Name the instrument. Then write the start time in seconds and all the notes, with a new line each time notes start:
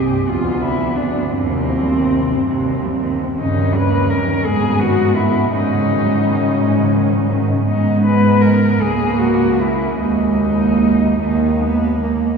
cello
Already playing: C2 C3 C4 G4
0.11 G2
0.26 D2 F2 B3 F4
0.45 B2
0.61 D3 E4
0.79 F3
0.95 D3 D4
1.12 B2
1.29 D#2 G2 C4
1.48 C3
1.64 D#3
1.81 G3
1.97 D#3
2.15 C3
2.33 D#2 G2
2.50 C3
2.68 D#3
2.85 G3
3.03 D#3
3.20 C3
3.36 G2 C#3 C#4 D#4
3.55 D#3
3.73 G3 B4
3.91 A#3
4.09 G3 A#4
4.26 D#3
4.43 G#2 B3 G#4
4.61 B2
4.79 D#3 F#4
4.97 G#3
5.13 D#3 E4
5.31 B2
5.50 G#2 A#2 C#4 D#4
5.68 C#3
5.86 D#3
6.04 G3
6.22 D#3
6.40 C#3
6.59 G#2 A#2
6.77 C#3
6.94 D#3
7.12 G3
7.30 D#3
7.49 C#3
7.67 G#2 G#3 B3 D#4
8.05 B4
8.41 A#4
8.79 C#2 A#3 G#4
9.19 F#4
9.61 E4
9.98 D#2 G#3 A#3 D#4
11.20 D#2 D#3 A#3
11.60 B3
12.03 A#3